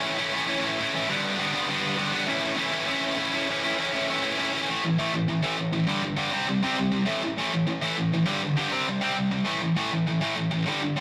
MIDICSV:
0, 0, Header, 1, 2, 480
1, 0, Start_track
1, 0, Tempo, 299252
1, 1745, Time_signature, 4, 2, 24, 8
1, 17650, End_track
2, 0, Start_track
2, 0, Title_t, "Distorted electric guitar"
2, 0, Program_c, 0, 30
2, 0, Note_on_c, 0, 45, 98
2, 0, Note_on_c, 0, 52, 93
2, 0, Note_on_c, 0, 57, 97
2, 0, Note_on_c, 0, 61, 114
2, 0, Note_on_c, 0, 64, 107
2, 268, Note_off_c, 0, 64, 0
2, 279, Note_off_c, 0, 61, 0
2, 287, Note_on_c, 0, 64, 101
2, 288, Note_off_c, 0, 57, 0
2, 299, Note_on_c, 0, 61, 92
2, 306, Note_off_c, 0, 45, 0
2, 307, Note_off_c, 0, 52, 0
2, 307, Note_on_c, 0, 57, 80
2, 325, Note_on_c, 0, 45, 74
2, 327, Note_on_c, 0, 52, 80
2, 494, Note_off_c, 0, 45, 0
2, 511, Note_off_c, 0, 52, 0
2, 513, Note_on_c, 0, 45, 90
2, 519, Note_off_c, 0, 57, 0
2, 526, Note_off_c, 0, 61, 0
2, 530, Note_on_c, 0, 52, 91
2, 538, Note_on_c, 0, 57, 104
2, 544, Note_off_c, 0, 64, 0
2, 546, Note_on_c, 0, 61, 95
2, 563, Note_on_c, 0, 64, 112
2, 727, Note_off_c, 0, 64, 0
2, 737, Note_off_c, 0, 61, 0
2, 747, Note_on_c, 0, 64, 107
2, 754, Note_off_c, 0, 57, 0
2, 756, Note_on_c, 0, 61, 106
2, 760, Note_off_c, 0, 45, 0
2, 761, Note_off_c, 0, 52, 0
2, 773, Note_on_c, 0, 57, 105
2, 779, Note_on_c, 0, 45, 93
2, 781, Note_on_c, 0, 52, 104
2, 1235, Note_off_c, 0, 64, 0
2, 1245, Note_off_c, 0, 61, 0
2, 1254, Note_on_c, 0, 64, 108
2, 1257, Note_off_c, 0, 57, 0
2, 1264, Note_on_c, 0, 61, 90
2, 1267, Note_off_c, 0, 52, 0
2, 1270, Note_off_c, 0, 45, 0
2, 1276, Note_on_c, 0, 57, 89
2, 1286, Note_on_c, 0, 52, 94
2, 1289, Note_on_c, 0, 45, 85
2, 1487, Note_off_c, 0, 45, 0
2, 1492, Note_off_c, 0, 52, 0
2, 1503, Note_off_c, 0, 57, 0
2, 1506, Note_on_c, 0, 45, 86
2, 1511, Note_on_c, 0, 52, 84
2, 1519, Note_off_c, 0, 61, 0
2, 1522, Note_on_c, 0, 57, 88
2, 1523, Note_off_c, 0, 64, 0
2, 1538, Note_on_c, 0, 61, 88
2, 1544, Note_on_c, 0, 64, 95
2, 1725, Note_off_c, 0, 45, 0
2, 1732, Note_on_c, 0, 43, 93
2, 1734, Note_off_c, 0, 52, 0
2, 1739, Note_off_c, 0, 57, 0
2, 1744, Note_on_c, 0, 50, 106
2, 1747, Note_off_c, 0, 61, 0
2, 1750, Note_off_c, 0, 64, 0
2, 1757, Note_on_c, 0, 55, 107
2, 1768, Note_on_c, 0, 62, 101
2, 1769, Note_on_c, 0, 59, 101
2, 2197, Note_off_c, 0, 43, 0
2, 2215, Note_off_c, 0, 55, 0
2, 2217, Note_off_c, 0, 50, 0
2, 2217, Note_on_c, 0, 43, 78
2, 2235, Note_off_c, 0, 59, 0
2, 2235, Note_on_c, 0, 55, 83
2, 2236, Note_on_c, 0, 50, 89
2, 2238, Note_off_c, 0, 62, 0
2, 2254, Note_on_c, 0, 59, 90
2, 2257, Note_on_c, 0, 62, 95
2, 2424, Note_off_c, 0, 62, 0
2, 2443, Note_on_c, 0, 62, 98
2, 2444, Note_off_c, 0, 59, 0
2, 2451, Note_off_c, 0, 50, 0
2, 2456, Note_off_c, 0, 55, 0
2, 2460, Note_off_c, 0, 43, 0
2, 2463, Note_on_c, 0, 59, 100
2, 2470, Note_on_c, 0, 50, 86
2, 2475, Note_on_c, 0, 55, 84
2, 2479, Note_on_c, 0, 43, 89
2, 2673, Note_off_c, 0, 43, 0
2, 2685, Note_off_c, 0, 50, 0
2, 2689, Note_off_c, 0, 55, 0
2, 2692, Note_on_c, 0, 43, 97
2, 2705, Note_on_c, 0, 50, 101
2, 2706, Note_off_c, 0, 59, 0
2, 2708, Note_on_c, 0, 55, 113
2, 2710, Note_off_c, 0, 62, 0
2, 2726, Note_on_c, 0, 59, 112
2, 2730, Note_on_c, 0, 62, 112
2, 3125, Note_off_c, 0, 43, 0
2, 3144, Note_on_c, 0, 43, 88
2, 3147, Note_off_c, 0, 50, 0
2, 3152, Note_off_c, 0, 55, 0
2, 3162, Note_off_c, 0, 59, 0
2, 3166, Note_on_c, 0, 50, 91
2, 3167, Note_off_c, 0, 62, 0
2, 3171, Note_on_c, 0, 55, 103
2, 3181, Note_on_c, 0, 59, 88
2, 3186, Note_on_c, 0, 62, 114
2, 3385, Note_off_c, 0, 62, 0
2, 3397, Note_off_c, 0, 59, 0
2, 3405, Note_on_c, 0, 62, 87
2, 3412, Note_off_c, 0, 55, 0
2, 3416, Note_off_c, 0, 50, 0
2, 3416, Note_on_c, 0, 59, 92
2, 3423, Note_off_c, 0, 43, 0
2, 3432, Note_on_c, 0, 55, 81
2, 3435, Note_on_c, 0, 50, 82
2, 3442, Note_on_c, 0, 43, 82
2, 3624, Note_off_c, 0, 43, 0
2, 3631, Note_on_c, 0, 45, 108
2, 3637, Note_off_c, 0, 50, 0
2, 3641, Note_off_c, 0, 62, 0
2, 3643, Note_on_c, 0, 52, 94
2, 3647, Note_off_c, 0, 59, 0
2, 3654, Note_off_c, 0, 55, 0
2, 3660, Note_on_c, 0, 57, 98
2, 3662, Note_on_c, 0, 61, 101
2, 3684, Note_on_c, 0, 64, 112
2, 4092, Note_off_c, 0, 45, 0
2, 4109, Note_off_c, 0, 52, 0
2, 4111, Note_on_c, 0, 45, 87
2, 4115, Note_off_c, 0, 57, 0
2, 4116, Note_off_c, 0, 61, 0
2, 4128, Note_off_c, 0, 64, 0
2, 4128, Note_on_c, 0, 52, 90
2, 4134, Note_on_c, 0, 57, 92
2, 4135, Note_on_c, 0, 61, 96
2, 4147, Note_on_c, 0, 64, 98
2, 4328, Note_off_c, 0, 64, 0
2, 4345, Note_off_c, 0, 61, 0
2, 4347, Note_on_c, 0, 64, 103
2, 4354, Note_off_c, 0, 57, 0
2, 4364, Note_on_c, 0, 61, 97
2, 4365, Note_off_c, 0, 52, 0
2, 4371, Note_off_c, 0, 45, 0
2, 4373, Note_on_c, 0, 57, 102
2, 4384, Note_on_c, 0, 52, 85
2, 4390, Note_on_c, 0, 45, 82
2, 4567, Note_off_c, 0, 45, 0
2, 4587, Note_on_c, 0, 45, 100
2, 4589, Note_off_c, 0, 52, 0
2, 4595, Note_off_c, 0, 57, 0
2, 4604, Note_off_c, 0, 61, 0
2, 4608, Note_on_c, 0, 52, 112
2, 4615, Note_off_c, 0, 64, 0
2, 4615, Note_on_c, 0, 57, 105
2, 4623, Note_on_c, 0, 61, 106
2, 4634, Note_on_c, 0, 64, 111
2, 5068, Note_off_c, 0, 45, 0
2, 5074, Note_off_c, 0, 52, 0
2, 5080, Note_off_c, 0, 57, 0
2, 5087, Note_on_c, 0, 45, 82
2, 5090, Note_off_c, 0, 61, 0
2, 5093, Note_on_c, 0, 52, 95
2, 5099, Note_on_c, 0, 57, 95
2, 5100, Note_off_c, 0, 64, 0
2, 5109, Note_on_c, 0, 61, 89
2, 5119, Note_on_c, 0, 64, 109
2, 5330, Note_off_c, 0, 64, 0
2, 5344, Note_off_c, 0, 61, 0
2, 5349, Note_on_c, 0, 64, 89
2, 5354, Note_off_c, 0, 57, 0
2, 5358, Note_off_c, 0, 52, 0
2, 5362, Note_off_c, 0, 45, 0
2, 5363, Note_on_c, 0, 61, 89
2, 5373, Note_on_c, 0, 57, 82
2, 5377, Note_on_c, 0, 52, 82
2, 5389, Note_on_c, 0, 45, 73
2, 5575, Note_off_c, 0, 64, 0
2, 5580, Note_off_c, 0, 45, 0
2, 5582, Note_off_c, 0, 61, 0
2, 5586, Note_off_c, 0, 57, 0
2, 5588, Note_off_c, 0, 52, 0
2, 5600, Note_on_c, 0, 45, 91
2, 5609, Note_on_c, 0, 52, 99
2, 5613, Note_on_c, 0, 57, 101
2, 5626, Note_on_c, 0, 61, 105
2, 5627, Note_on_c, 0, 64, 108
2, 5811, Note_off_c, 0, 64, 0
2, 5827, Note_off_c, 0, 61, 0
2, 5830, Note_on_c, 0, 64, 86
2, 5833, Note_off_c, 0, 57, 0
2, 5840, Note_off_c, 0, 52, 0
2, 5847, Note_on_c, 0, 61, 81
2, 5853, Note_off_c, 0, 45, 0
2, 5853, Note_on_c, 0, 57, 74
2, 5859, Note_on_c, 0, 52, 73
2, 5872, Note_on_c, 0, 45, 75
2, 6035, Note_off_c, 0, 45, 0
2, 6047, Note_off_c, 0, 52, 0
2, 6054, Note_on_c, 0, 45, 75
2, 6059, Note_off_c, 0, 57, 0
2, 6066, Note_on_c, 0, 52, 80
2, 6067, Note_off_c, 0, 61, 0
2, 6078, Note_on_c, 0, 57, 77
2, 6081, Note_off_c, 0, 64, 0
2, 6086, Note_on_c, 0, 61, 86
2, 6100, Note_on_c, 0, 64, 88
2, 6271, Note_off_c, 0, 64, 0
2, 6290, Note_on_c, 0, 64, 103
2, 6291, Note_off_c, 0, 57, 0
2, 6291, Note_off_c, 0, 61, 0
2, 6302, Note_off_c, 0, 52, 0
2, 6310, Note_on_c, 0, 57, 90
2, 6310, Note_on_c, 0, 61, 92
2, 6320, Note_off_c, 0, 45, 0
2, 6322, Note_on_c, 0, 52, 87
2, 6339, Note_on_c, 0, 45, 84
2, 6527, Note_off_c, 0, 45, 0
2, 6538, Note_off_c, 0, 52, 0
2, 6546, Note_on_c, 0, 45, 94
2, 6556, Note_off_c, 0, 57, 0
2, 6558, Note_on_c, 0, 52, 108
2, 6559, Note_off_c, 0, 61, 0
2, 6564, Note_off_c, 0, 64, 0
2, 6575, Note_on_c, 0, 57, 100
2, 6578, Note_on_c, 0, 61, 100
2, 6585, Note_on_c, 0, 64, 103
2, 6760, Note_off_c, 0, 64, 0
2, 6774, Note_off_c, 0, 61, 0
2, 6779, Note_on_c, 0, 64, 95
2, 6784, Note_off_c, 0, 57, 0
2, 6793, Note_on_c, 0, 61, 98
2, 6795, Note_off_c, 0, 52, 0
2, 6803, Note_on_c, 0, 57, 96
2, 6805, Note_off_c, 0, 45, 0
2, 6814, Note_on_c, 0, 52, 82
2, 6824, Note_on_c, 0, 45, 86
2, 6992, Note_off_c, 0, 45, 0
2, 7008, Note_off_c, 0, 52, 0
2, 7011, Note_on_c, 0, 45, 86
2, 7016, Note_off_c, 0, 57, 0
2, 7028, Note_on_c, 0, 52, 95
2, 7030, Note_off_c, 0, 61, 0
2, 7035, Note_on_c, 0, 57, 88
2, 7046, Note_off_c, 0, 64, 0
2, 7050, Note_on_c, 0, 61, 91
2, 7065, Note_on_c, 0, 64, 104
2, 7248, Note_off_c, 0, 64, 0
2, 7257, Note_off_c, 0, 61, 0
2, 7267, Note_on_c, 0, 64, 85
2, 7276, Note_off_c, 0, 57, 0
2, 7277, Note_on_c, 0, 61, 86
2, 7285, Note_off_c, 0, 45, 0
2, 7288, Note_off_c, 0, 52, 0
2, 7295, Note_on_c, 0, 57, 81
2, 7306, Note_on_c, 0, 45, 66
2, 7307, Note_on_c, 0, 52, 73
2, 7495, Note_off_c, 0, 64, 0
2, 7499, Note_off_c, 0, 61, 0
2, 7504, Note_off_c, 0, 45, 0
2, 7509, Note_off_c, 0, 57, 0
2, 7515, Note_off_c, 0, 52, 0
2, 7523, Note_on_c, 0, 45, 87
2, 7531, Note_on_c, 0, 52, 81
2, 7539, Note_on_c, 0, 57, 102
2, 7734, Note_off_c, 0, 45, 0
2, 7743, Note_off_c, 0, 52, 0
2, 7751, Note_off_c, 0, 57, 0
2, 7753, Note_on_c, 0, 45, 64
2, 7762, Note_on_c, 0, 52, 69
2, 7969, Note_off_c, 0, 45, 0
2, 7973, Note_off_c, 0, 52, 0
2, 7996, Note_on_c, 0, 45, 81
2, 8001, Note_on_c, 0, 52, 88
2, 8019, Note_on_c, 0, 57, 94
2, 8215, Note_off_c, 0, 45, 0
2, 8222, Note_off_c, 0, 52, 0
2, 8231, Note_off_c, 0, 57, 0
2, 8234, Note_on_c, 0, 45, 77
2, 8247, Note_on_c, 0, 52, 73
2, 8449, Note_off_c, 0, 45, 0
2, 8456, Note_off_c, 0, 52, 0
2, 8470, Note_on_c, 0, 45, 80
2, 8474, Note_on_c, 0, 52, 85
2, 8679, Note_off_c, 0, 45, 0
2, 8690, Note_off_c, 0, 52, 0
2, 8698, Note_on_c, 0, 45, 92
2, 8716, Note_on_c, 0, 52, 101
2, 8729, Note_on_c, 0, 57, 99
2, 8927, Note_off_c, 0, 52, 0
2, 8931, Note_off_c, 0, 45, 0
2, 8946, Note_off_c, 0, 57, 0
2, 8946, Note_on_c, 0, 52, 92
2, 8954, Note_on_c, 0, 45, 77
2, 9164, Note_off_c, 0, 45, 0
2, 9166, Note_off_c, 0, 52, 0
2, 9184, Note_on_c, 0, 45, 65
2, 9190, Note_on_c, 0, 52, 78
2, 9404, Note_off_c, 0, 45, 0
2, 9407, Note_off_c, 0, 52, 0
2, 9411, Note_on_c, 0, 43, 90
2, 9435, Note_on_c, 0, 50, 90
2, 9438, Note_on_c, 0, 55, 101
2, 9648, Note_off_c, 0, 43, 0
2, 9654, Note_off_c, 0, 50, 0
2, 9661, Note_off_c, 0, 55, 0
2, 9673, Note_on_c, 0, 50, 68
2, 9680, Note_on_c, 0, 43, 67
2, 9870, Note_off_c, 0, 43, 0
2, 9889, Note_off_c, 0, 50, 0
2, 9889, Note_on_c, 0, 43, 88
2, 9907, Note_on_c, 0, 50, 91
2, 9920, Note_on_c, 0, 55, 92
2, 10127, Note_off_c, 0, 43, 0
2, 10129, Note_off_c, 0, 50, 0
2, 10133, Note_off_c, 0, 55, 0
2, 10136, Note_on_c, 0, 48, 88
2, 10152, Note_on_c, 0, 55, 107
2, 10165, Note_on_c, 0, 60, 102
2, 10370, Note_off_c, 0, 48, 0
2, 10378, Note_off_c, 0, 55, 0
2, 10384, Note_off_c, 0, 60, 0
2, 10398, Note_on_c, 0, 48, 70
2, 10400, Note_on_c, 0, 55, 77
2, 10612, Note_off_c, 0, 48, 0
2, 10613, Note_off_c, 0, 55, 0
2, 10631, Note_on_c, 0, 48, 93
2, 10646, Note_on_c, 0, 55, 110
2, 10649, Note_on_c, 0, 60, 101
2, 10851, Note_off_c, 0, 48, 0
2, 10853, Note_off_c, 0, 55, 0
2, 10867, Note_off_c, 0, 60, 0
2, 10871, Note_on_c, 0, 48, 76
2, 10873, Note_on_c, 0, 55, 77
2, 11077, Note_off_c, 0, 48, 0
2, 11081, Note_off_c, 0, 55, 0
2, 11097, Note_on_c, 0, 48, 74
2, 11100, Note_on_c, 0, 55, 72
2, 11319, Note_on_c, 0, 45, 96
2, 11321, Note_off_c, 0, 48, 0
2, 11322, Note_off_c, 0, 55, 0
2, 11338, Note_on_c, 0, 52, 98
2, 11354, Note_on_c, 0, 57, 93
2, 11561, Note_off_c, 0, 45, 0
2, 11571, Note_off_c, 0, 52, 0
2, 11579, Note_off_c, 0, 57, 0
2, 11595, Note_on_c, 0, 45, 63
2, 11609, Note_on_c, 0, 52, 81
2, 11809, Note_off_c, 0, 45, 0
2, 11817, Note_off_c, 0, 52, 0
2, 11835, Note_on_c, 0, 45, 86
2, 11841, Note_on_c, 0, 52, 94
2, 11859, Note_on_c, 0, 57, 99
2, 12049, Note_off_c, 0, 45, 0
2, 12062, Note_off_c, 0, 52, 0
2, 12068, Note_on_c, 0, 45, 75
2, 12071, Note_off_c, 0, 57, 0
2, 12081, Note_on_c, 0, 52, 80
2, 12278, Note_off_c, 0, 45, 0
2, 12282, Note_off_c, 0, 52, 0
2, 12298, Note_on_c, 0, 45, 71
2, 12301, Note_on_c, 0, 52, 89
2, 12516, Note_off_c, 0, 45, 0
2, 12522, Note_off_c, 0, 52, 0
2, 12535, Note_on_c, 0, 45, 82
2, 12548, Note_on_c, 0, 52, 92
2, 12561, Note_on_c, 0, 57, 103
2, 12764, Note_off_c, 0, 52, 0
2, 12768, Note_off_c, 0, 45, 0
2, 12782, Note_off_c, 0, 57, 0
2, 12783, Note_on_c, 0, 52, 85
2, 12789, Note_on_c, 0, 45, 87
2, 13003, Note_off_c, 0, 52, 0
2, 13006, Note_off_c, 0, 45, 0
2, 13046, Note_on_c, 0, 45, 61
2, 13053, Note_on_c, 0, 52, 80
2, 13237, Note_off_c, 0, 45, 0
2, 13243, Note_on_c, 0, 43, 100
2, 13251, Note_off_c, 0, 52, 0
2, 13257, Note_on_c, 0, 50, 88
2, 13264, Note_on_c, 0, 55, 103
2, 13482, Note_off_c, 0, 43, 0
2, 13489, Note_off_c, 0, 50, 0
2, 13492, Note_off_c, 0, 55, 0
2, 13524, Note_on_c, 0, 43, 66
2, 13531, Note_on_c, 0, 50, 81
2, 13721, Note_off_c, 0, 43, 0
2, 13736, Note_off_c, 0, 50, 0
2, 13741, Note_on_c, 0, 43, 81
2, 13756, Note_on_c, 0, 50, 83
2, 13767, Note_on_c, 0, 55, 95
2, 13962, Note_off_c, 0, 50, 0
2, 13969, Note_off_c, 0, 55, 0
2, 13969, Note_on_c, 0, 48, 88
2, 13970, Note_off_c, 0, 43, 0
2, 13988, Note_on_c, 0, 55, 102
2, 13996, Note_on_c, 0, 60, 92
2, 14204, Note_off_c, 0, 48, 0
2, 14214, Note_off_c, 0, 55, 0
2, 14218, Note_off_c, 0, 60, 0
2, 14249, Note_on_c, 0, 48, 69
2, 14252, Note_on_c, 0, 55, 82
2, 14433, Note_off_c, 0, 48, 0
2, 14445, Note_off_c, 0, 55, 0
2, 14452, Note_on_c, 0, 48, 84
2, 14464, Note_on_c, 0, 55, 107
2, 14493, Note_on_c, 0, 60, 96
2, 14681, Note_off_c, 0, 48, 0
2, 14683, Note_off_c, 0, 55, 0
2, 14700, Note_on_c, 0, 48, 78
2, 14702, Note_on_c, 0, 55, 85
2, 14706, Note_off_c, 0, 60, 0
2, 14920, Note_off_c, 0, 48, 0
2, 14921, Note_off_c, 0, 55, 0
2, 14936, Note_on_c, 0, 48, 65
2, 14941, Note_on_c, 0, 55, 65
2, 15150, Note_on_c, 0, 45, 81
2, 15152, Note_off_c, 0, 48, 0
2, 15159, Note_on_c, 0, 52, 84
2, 15160, Note_off_c, 0, 55, 0
2, 15169, Note_on_c, 0, 57, 96
2, 15394, Note_off_c, 0, 45, 0
2, 15398, Note_off_c, 0, 52, 0
2, 15403, Note_off_c, 0, 57, 0
2, 15421, Note_on_c, 0, 45, 68
2, 15421, Note_on_c, 0, 52, 72
2, 15639, Note_off_c, 0, 45, 0
2, 15639, Note_off_c, 0, 52, 0
2, 15661, Note_on_c, 0, 45, 85
2, 15675, Note_on_c, 0, 52, 89
2, 15677, Note_on_c, 0, 57, 93
2, 15889, Note_off_c, 0, 45, 0
2, 15896, Note_off_c, 0, 52, 0
2, 15897, Note_off_c, 0, 57, 0
2, 15908, Note_on_c, 0, 45, 67
2, 15917, Note_on_c, 0, 52, 77
2, 16123, Note_off_c, 0, 45, 0
2, 16127, Note_off_c, 0, 52, 0
2, 16151, Note_on_c, 0, 45, 75
2, 16156, Note_on_c, 0, 52, 82
2, 16357, Note_off_c, 0, 45, 0
2, 16367, Note_off_c, 0, 52, 0
2, 16376, Note_on_c, 0, 45, 97
2, 16390, Note_on_c, 0, 52, 110
2, 16405, Note_on_c, 0, 57, 100
2, 16606, Note_off_c, 0, 45, 0
2, 16609, Note_off_c, 0, 52, 0
2, 16620, Note_off_c, 0, 57, 0
2, 16622, Note_on_c, 0, 45, 80
2, 16628, Note_on_c, 0, 52, 87
2, 16839, Note_off_c, 0, 45, 0
2, 16842, Note_off_c, 0, 52, 0
2, 16857, Note_on_c, 0, 45, 71
2, 16866, Note_on_c, 0, 52, 82
2, 17076, Note_off_c, 0, 45, 0
2, 17081, Note_off_c, 0, 52, 0
2, 17096, Note_on_c, 0, 43, 86
2, 17110, Note_on_c, 0, 50, 95
2, 17127, Note_on_c, 0, 55, 92
2, 17319, Note_off_c, 0, 43, 0
2, 17332, Note_off_c, 0, 50, 0
2, 17338, Note_on_c, 0, 43, 66
2, 17341, Note_off_c, 0, 55, 0
2, 17349, Note_on_c, 0, 50, 72
2, 17557, Note_off_c, 0, 43, 0
2, 17562, Note_off_c, 0, 50, 0
2, 17584, Note_on_c, 0, 43, 89
2, 17592, Note_on_c, 0, 50, 91
2, 17650, Note_off_c, 0, 43, 0
2, 17650, Note_off_c, 0, 50, 0
2, 17650, End_track
0, 0, End_of_file